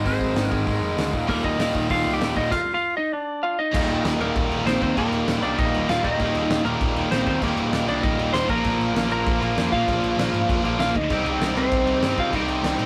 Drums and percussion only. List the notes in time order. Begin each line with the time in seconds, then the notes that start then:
0.06 kick, open hi-hat
0.21 kick
0.36 snare, open hi-hat
0.52 kick
0.67 kick, open hi-hat
0.98 snare, open hi-hat
1.13 kick
1.29 kick, open hi-hat
1.44 kick
1.60 snare, open hi-hat
1.75 kick
1.90 kick, open hi-hat
2.21 snare, open hi-hat
2.36 kick
2.52 kick, crash
3.74 kick, crash
3.90 crash
4.05 snare, crash
4.21 crash
4.36 kick, crash
4.52 crash
4.67 snare, crash
4.82 kick, crash
4.97 kick, crash
5.12 crash
5.28 snare, crash
5.43 crash
5.59 kick, crash
5.74 crash
5.89 snare, crash
6.04 kick, crash
6.20 kick, crash
6.35 crash
6.50 snare, crash
6.66 crash
6.81 kick, crash
6.96 crash
7.12 snare, crash
7.27 kick, crash
7.42 kick, crash
7.57 crash
7.73 snare, crash
7.88 crash
8.03 kick, crash
8.19 crash
8.34 snare, crash
8.49 kick, crash
8.64 kick, crash
8.81 crash
8.96 snare, crash
9.11 crash
9.26 kick, crash
9.42 crash
9.58 snare, crash
9.73 kick, crash
9.88 kick, crash
10.04 crash
10.19 snare, crash
10.34 crash
10.49 kick, crash
10.65 crash
10.80 snare, crash
10.95 kick, crash
11.10 kick, crash
11.26 crash
11.41 snare, crash
11.56 crash
11.72 kick, crash
11.87 crash
12.02 snare, crash
12.17 kick, crash
12.33 kick, crash
12.48 crash
12.64 snare, crash
12.79 crash